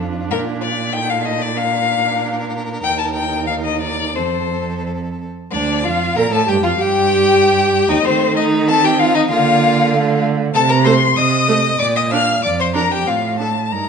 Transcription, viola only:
0.00 0.90 D4 medium
0.94 1.53 D#4 medium
1.57 2.80 D4 medium
2.83 4.13 D#4 medium
4.16 5.28 C4 medium
5.52 5.83 D4 medium
5.84 6.15 F4 medium
6.16 6.23 A#4 loud
6.31 6.46 A4 loud
6.47 6.63 G4 loud
6.63 6.70 F4 loud
6.79 7.91 G4 loud
7.89 8.04 D#4 loud
8.05 8.70 A3 medium
8.68 9.30 C4 loud
9.31 9.95 A#3 loud
9.93 10.55 A3 loud
10.85 11.00 A3 loud
11.48 11.63 A3 loud
12.12 12.26 D4 loud
12.74 12.89 D4 medium
13.06 13.14 C4 medium
13.39 13.47 D4 medium
13.70 13.89 D#4 medium

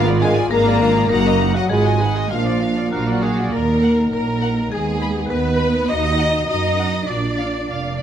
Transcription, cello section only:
0.00 0.43 G#2 medium
0.51 1.03 G#2 medium
1.10 1.63 F#2 medium
1.69 2.23 G#2 medium
2.30 2.84 A#2 medium
2.91 3.45 A#2 medium
2.91 3.49 F#3 medium
3.53 4.11 A#3 medium
4.13 4.70 A#3 medium
4.72 5.29 G#3 medium
5.30 5.87 B3 medium
5.89 6.47 D#4 medium
6.48 7.07 D#4 medium
7.09 7.97 D4 medium

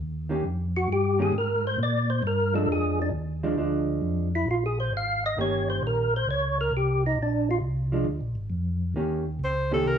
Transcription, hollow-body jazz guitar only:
0.29 0.42 D#3 medium
0.29 0.43 A#3 medium
0.29 0.43 C#4 medium
0.29 0.43 G4 medium
1.19 1.32 D#3 medium
1.19 1.32 A#3 medium
1.19 1.33 C#4 medium
1.19 1.33 G4 medium
2.53 3.10 F3 medium
2.53 3.10 G#3 medium
2.53 3.11 D4 medium
3.43 3.56 F3 medium
3.43 3.56 G#3 medium
3.43 3.57 D4 medium
3.57 4.27 F3 medium
3.57 4.27 G#3 medium
3.57 4.27 D4 medium
5.37 6.06 D#3 medium
5.37 6.07 A#3 medium
5.37 6.07 C#4 medium
5.37 6.07 G4 medium
7.92 8.05 F3 medium
7.92 8.06 G#3 medium
7.92 8.06 D4 medium
8.96 9.23 D#3 medium
8.96 9.23 A#3 medium
8.96 9.24 C#4 medium
8.96 9.24 G4 medium
9.71 9.98 D#3 medium
9.71 9.98 A#3 medium
9.71 9.98 C#4 medium
9.71 9.98 G4 medium

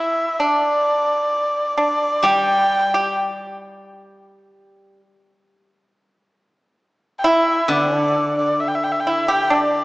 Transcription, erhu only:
0.00 0.40 E5 medium
0.39 1.78 D5 medium
1.79 2.27 D5 medium
2.26 3.17 G5 medium
7.19 7.28 G5 medium
7.27 7.73 E5 medium
7.71 8.37 D5 medium
8.38 8.62 D5 medium
8.60 8.70 E5 medium
8.68 8.77 G5 medium
8.75 8.85 E5 medium
8.84 8.94 G5 medium
8.92 9.01 E5 medium
9.00 9.11 G5 medium
9.09 9.32 E5 medium
9.30 9.55 G5 medium
9.53 9.84 D5 medium

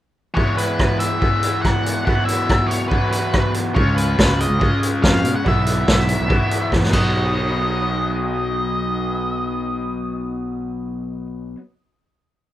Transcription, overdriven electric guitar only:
0.34 1.19 E3 medium
0.34 1.20 G#3 medium
0.34 1.21 B3 medium
0.34 1.23 E4 medium
1.20 2.04 E3 medium
1.20 2.05 G#3 medium
1.20 2.05 B3 medium
1.20 2.06 E4 medium
2.05 2.88 B2 medium
2.05 2.89 E3 medium
2.05 2.89 F#3 medium
2.05 2.91 B3 medium
2.05 2.91 E4 medium
2.89 3.73 B2 medium
2.89 3.73 E3 medium
2.89 3.74 F#3 medium
2.89 3.75 B3 medium
2.89 3.75 E4 medium
3.74 4.58 C#3 medium
3.74 4.59 G#3 medium
3.74 4.59 C#4 medium
3.74 4.60 F4 medium
4.59 5.43 C#3 medium
4.59 5.43 G#3 medium
4.59 5.44 C#4 medium
4.59 5.44 F4 medium
5.44 6.26 B2 medium
5.44 6.27 E3 medium
5.44 6.28 F#3 medium
5.44 6.28 B3 medium
5.44 6.29 E4 medium
6.27 6.89 B2 medium
6.27 6.90 E3 medium
6.27 6.91 F#3 medium
6.27 6.92 B3 medium
6.27 6.93 E4 medium
6.90 11.55 B2 medium
6.90 11.56 F#3 medium
6.90 11.58 B3 medium
6.90 11.59 D#4 medium

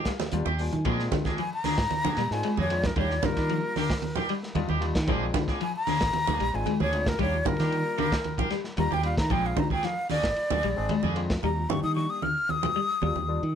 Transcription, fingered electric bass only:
0.33 0.44 D#2 medium
0.46 0.68 D#2 medium
0.73 0.83 D#3 medium
0.85 1.07 A#2 loud
1.78 1.89 G#2 medium
1.91 muted fingered electric bass stroke soft
2.05 2.15 D3 medium
2.17 2.29 A#2 loud
2.31 2.42 G#2 medium
2.58 2.90 F2 medium
2.96 3.18 D#2 loud
3.23 3.35 G2 medium
3.37 3.59 D#3 medium
4.55 4.67 D#2 loud
4.70 4.91 D#2 loud
4.95 5.09 D#3 loud
5.08 5.30 A#1 medium
6.01 6.12 G#1 medium
6.28 6.38 D2 medium
6.41 6.52 A#1 medium
6.55 6.65 G#1 medium
6.80 7.13 D2 medium
7.19 7.41 D#2 loud
7.46 7.57 G2 medium
7.60 7.82 D#3 medium
8.78 8.90 D#2 loud
8.92 9.14 D#2 medium
9.17 9.32 D#3 medium
9.30 9.53 A#1 medium
10.24 10.34 G#1 medium
10.51 10.61 D2 medium
10.64 10.75 A#1 medium
10.78 10.88 G#1 medium
11.04 11.36 F2 medium
11.43 11.65 D#2 loud
11.69 11.81 G2 medium
11.84 12.05 D#3 medium
13.03 13.14 D#2 loud
13.16 13.38 D#2 medium
13.43 13.55 D#3 loud

